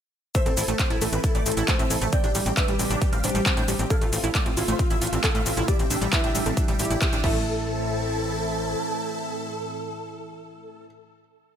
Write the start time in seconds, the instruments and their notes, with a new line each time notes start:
0.35 analog synth pad C3 E3 A3 E4, synth pluck A3, felt piano C5, supersaw synth E5, kick, closed hi-hat, shaker
0.46 analog synth bass A1, synth pluck C4, supersaw synth A4, closed hi-hat, shaker
0.57 analog synth bass A1, synth pluck E4, supersaw synth A4, open hi-hat, shaker
0.68 analog synth bass A1, synth pluck A3, supersaw synth A4, closed hi-hat, shaker
0.79 synth pluck C4, supersaw synth C5, kick, clap, closed hi-hat, shaker
0.90 analog synth bass A1, synth pluck E4, supersaw synth A4, closed hi-hat
1.01 analog synth bass A1, synth pluck A3, supersaw synth A4, felt piano A4, open hi-hat, shaker
1.13 analog synth bass A1, synth pluck C4, supersaw synth B4, closed hi-hat, shaker
1.24 synth pluck E4, supersaw synth A4, kick, closed hi-hat, shaker
1.35 analog synth bass A1, synth pluck A3, supersaw synth D5, closed hi-hat, shaker
1.46 analog synth bass A1, synth pluck C4, supersaw synth A4, open hi-hat, shaker
1.52 closed hi-hat
1.57 analog synth bass A1, synth pluck E4, supersaw synth A4, closed hi-hat, shaker
1.68 synth pluck A3, supersaw synth A4, felt piano C5, kick, clap, closed hi-hat, shaker
1.79 analog synth bass A2, synth pluck C4, supersaw synth E5, closed hi-hat, shaker
1.90 analog synth bass A1, synth pluck E4, supersaw synth A4, open hi-hat, shaker
2.01 analog synth bass A1, synth pluck A3, supersaw synth A4, closed hi-hat, shaker
2.12 analog synth pad G3 D4 G4, synth pluck C4, felt piano D5, supersaw synth G5, kick, closed hi-hat, shaker
2.24 analog synth bass A1, synth pluck D4, supersaw synth G4, closed hi-hat, shaker
2.35 analog synth bass A1, synth pluck G3, supersaw synth G4, open hi-hat, shaker
2.46 analog synth bass A1, synth pluck C4, supersaw synth G4, closed hi-hat, shaker
2.57 synth pluck D4, felt piano B4, supersaw synth E5, kick, clap, closed hi-hat, shaker
2.68 analog synth bass A1, synth pluck G3, supersaw synth G4, closed hi-hat
2.79 analog synth bass A1, synth pluck C4, supersaw synth G4, open hi-hat, shaker
2.90 analog synth bass A1, synth pluck D4, supersaw synth D5, closed hi-hat, shaker
3.02 synth pluck G3, supersaw synth G4, kick, closed hi-hat, shaker
3.12 analog synth bass A1, synth pluck C4, supersaw synth F5, closed hi-hat, shaker
3.24 analog synth bass A1, synth pluck D4, supersaw synth G4, felt piano C5, open hi-hat, shaker
3.29 closed hi-hat
3.35 analog synth bass A1, synth pluck G3, supersaw synth G4, closed hi-hat, shaker
3.46 synth pluck C4, supersaw synth G4, kick, clap, closed hi-hat, shaker
3.57 analog synth bass A2, synth pluck D4, supersaw synth G5, closed hi-hat, shaker
3.68 analog synth bass A1, synth pluck G3, supersaw synth G4, open hi-hat, shaker
3.79 analog synth bass A1, synth pluck C4, supersaw synth G4, closed hi-hat, shaker
3.90 analog synth pad A3 F4 E5, synth pluck E4, felt piano A4, supersaw synth F5, kick, closed hi-hat, shaker
4.01 analog synth bass A1, synth pluck A3, supersaw synth F4, closed hi-hat, shaker
4.12 analog synth bass A1, synth pluck C4, supersaw synth F4, open hi-hat, shaker
4.24 analog synth bass A1, synth pluck E4, supersaw synth F4, closed hi-hat, shaker
4.35 synth pluck A3, supersaw synth D5, kick, clap, closed hi-hat, shaker
4.46 analog synth bass A1, synth pluck C4, supersaw synth F4, closed hi-hat
4.57 analog synth bass A1, synth pluck E4, supersaw synth F4, felt piano F4, open hi-hat, shaker
4.68 analog synth bass A1, synth pluck A3, supersaw synth C5, closed hi-hat, shaker
4.79 synth pluck C4, supersaw synth F4, kick, closed hi-hat, shaker
4.90 analog synth bass A1, synth pluck E4, supersaw synth E5, closed hi-hat, shaker
5.01 analog synth bass A1, synth pluck A3, supersaw synth F4, open hi-hat, shaker
5.07 closed hi-hat
5.13 analog synth bass A1, synth pluck C4, supersaw synth F4, closed hi-hat, shaker
5.24 synth pluck E4, felt piano A4, kick, clap, closed hi-hat, shaker
5.35 analog synth bass A2, synth pluck A3, supersaw synth F5, closed hi-hat, shaker
5.46 analog synth bass A1, synth pluck C4, supersaw synth F4, open hi-hat, shaker
5.57 analog synth bass A1, synth pluck E4, supersaw synth F4, closed hi-hat, shaker
5.68 synth pluck G3, analog synth pad G3 D4, felt piano G4, supersaw synth D5, kick, closed hi-hat, shaker
5.79 analog synth bass A1, synth pluck C4, supersaw synth G4, closed hi-hat, shaker
5.90 analog synth bass A1, synth pluck D4, supersaw synth G4, open hi-hat, shaker
6.01 analog synth bass A1, synth pluck G3, supersaw synth G4, closed hi-hat, shaker
6.13 synth pluck C4, felt piano E4, supersaw synth B4, kick, clap, closed hi-hat, shaker
6.24 analog synth bass A1, synth pluck D4, supersaw synth G4, closed hi-hat
6.35 analog synth bass A1, synth pluck G3, supersaw synth G4, open hi-hat, shaker
6.46 analog synth bass A1, synth pluck C4, supersaw synth A4, closed hi-hat, shaker
6.57 synth pluck D4, supersaw synth G4, kick, closed hi-hat, shaker
6.68 analog synth bass A1, synth pluck G3, supersaw synth G4, closed hi-hat, shaker
6.79 analog synth bass A1, felt piano E4, synth pluck G4, supersaw synth G4, open hi-hat, shaker
6.85 closed hi-hat
6.90 analog synth bass A1, synth pluck E4, supersaw synth G4, closed hi-hat, shaker
7.02 supersaw synth G4, synth pluck C5, kick, clap, closed hi-hat, shaker
7.13 analog synth bass A1, synth pluck D4, supersaw synth G4, closed hi-hat, shaker
7.24 analog synth bass A1, analog synth pad A2 E3 C4 E4, synth pluck A3, felt piano E4, supersaw synth A4, kick, crash